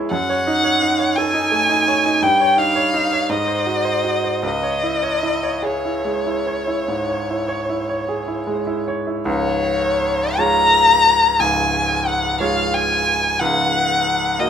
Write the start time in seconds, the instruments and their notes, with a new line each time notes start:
Already playing: grand piano E2 G#3 E4 G#4 C#5
0.11 grand piano F#2, violin F#5
0.29 grand piano C#5
0.47 grand piano D#4
0.64 grand piano C#5
0.82 grand piano D#4
0.99 grand piano C#5
1.16 grand piano A4, violin G#5
1.34 grand piano D#4
1.51 grand piano A3
1.69 grand piano D#4
1.88 grand piano C#5
2.06 grand piano D#4
2.22 grand piano G2, violin G5
2.40 grand piano C#5
2.57 grand piano D#4, violin F5
2.75 grand piano C#5
2.94 grand piano D#4
3.13 grand piano C#5
3.29 grand piano G#2, violin D#5
3.48 grand piano C5
3.66 grand piano F#4
3.85 grand piano C5
4.04 grand piano F#4
4.24 grand piano C5
4.43 grand piano C#2, violin D#5
4.63 grand piano C#5
4.83 grand piano E4
5.03 grand piano C#5
5.23 grand piano E4
5.43 grand piano C#5
5.63 grand piano G#4, violin C#5
5.85 grand piano E4
6.05 grand piano G#3
6.26 grand piano E4
6.47 grand piano C#5
6.67 grand piano E4
6.88 grand piano G#2
7.09 grand piano C#5
7.30 grand piano E4
7.48 grand piano C#5
7.69 grand piano E4
7.89 grand piano C#5
8.09 grand piano G#4
8.28 grand piano E4
8.47 grand piano G#3
8.67 grand piano E4
8.88 grand piano C#5
9.07 grand piano E4
9.25 grand piano C#1 C#2, violin C#5
10.38 grand piano G#3 F4 C#5, violin A#5
11.39 grand piano C#1 C#2, violin G#5
12.08 violin F#5
12.40 grand piano G#3 F4 C#5, violin F5
12.74 violin G#5
13.40 grand piano C#1 C#2, violin F#5
14.40 grand piano A#3 F#4 A#4, violin D#5